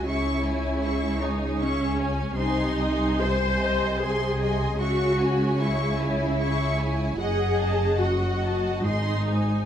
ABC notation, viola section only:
X:1
M:3/4
L:1/8
Q:1/4=75
K:C#m
V:1 name="Viola section"
E3 D C2 | D2 ^B2 G2 | F2 E4 | G2 F2 D2 |]